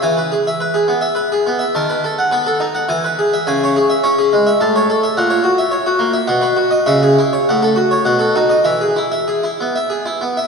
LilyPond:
<<
  \new Staff \with { instrumentName = "Harpsichord" } { \time 3/4 \key e \major \tempo 4 = 104 gis''16 b'16 gis'16 e''16 b'16 gis'16 b16 e''16 b'16 gis'16 b16 e''16 | a''16 b'16 a'16 fis''16 b'16 a'16 dis'16 fis''16 gis''16 b'16 gis'16 e''16 | gis''16 cis''16 gis'16 e''16 cis''16 gis'16 gis16 e''16 a''16 cis''16 a'16 e''16 | fis''16 cis''16 fis'16 e''16 cis''16 fis'16 ais16 e''16 fis''16 b'16 fis'16 dis''16 |
e''16 gis'16 e'16 cis''16 fis''16 a'16 fis'16 cis''16 fis''16 a'16 fis'16 dis''16 | e''16 gis'16 e'16 e''16 gis'16 e'16 b16 e''16 gis'16 e'16 b16 e''16 | }
  \new Staff \with { instrumentName = "Harpsichord" } { \clef bass \time 3/4 \key e \major e8 r2 r8 | dis8 r8 b8 r8 e8 r8 | cis8 r8 cis'8 r8 a,8 r8 | ais,8 r4. b,8 r8 |
cis8 r8 a,8 r8 b,8 dis'8 | e8 r2 r8 | }
>>